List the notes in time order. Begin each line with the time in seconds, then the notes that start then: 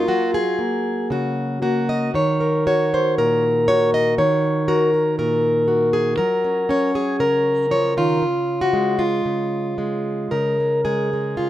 Already playing: F#3 A#3 F4
0.08 F#3 F#4
0.34 G#4
0.59 A#3
1.10 C#3 F#4
1.62 A#3 F#4
1.89 D#5
2.14 D#3 C#5
2.40 A#4
2.67 F#4 C#5
2.94 C5
3.18 A#2 A#4
3.68 F#4 C#5
3.94 D#5
4.18 D#3 C#5
4.68 F#4 A#4
4.94 F#4
5.19 A#2 A#4
5.68 F#4
5.93 G#4
6.18 F#3 A#4
6.44 C#4
6.69 C#4 C#5
6.95 G#4
7.19 C#3 A#4
7.71 F3 C#5
7.97 D#3 F4
8.22 C#3
8.61 F#4
8.73 G#3
8.99 F4
9.25 C#3
9.78 G#3
10.31 C#3 A#4
10.60 G#3
10.85 G#3 G#4
11.13 G#3
11.37 C#3 F4